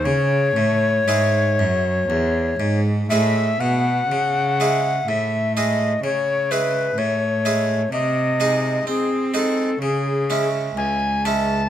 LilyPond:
<<
  \new Staff \with { instrumentName = "Recorder" } { \time 4/4 \key cis \minor \tempo 4 = 63 cis''2. e''8 fis''8~ | fis''4 e''8 dis''8 cis''8 b'8 cis''4 | dis''4 gis'8 a'8 gis'8 r8 gis''8 a''8 | }
  \new Staff \with { instrumentName = "Harpsichord" } { \time 4/4 \key cis \minor r4 <gis e' gis'>4 r4 <gis e' gis'>4 | r8 <gis e' gis'>4 <gis e' gis'>8 r8 <gis e' gis'>4 <gis e' gis'>8 | r8 <gis dis' gis'>4 <gis dis' gis'>8 r8 <gis cis' e'>4 <gis cis' e'>8 | }
  \new Staff \with { instrumentName = "Harpsichord" } { \clef bass \time 4/4 \key cis \minor cis8 a,8 gis,8 fis,8 e,8 gis,8 a,8 b,8 | cis4 a,4 cis4 a,4 | bis,4 bis4 cis4 cis,4 | }
  \new Staff \with { instrumentName = "Cello" } { \clef bass \time 4/4 \key cis \minor cis8 a,8 gis,8 fis,8 e,8 gis,8 a,8 b,8 | cis4 a,4 cis4 a,4 | bis,4 bis4 cis4 cis,4 | }
>>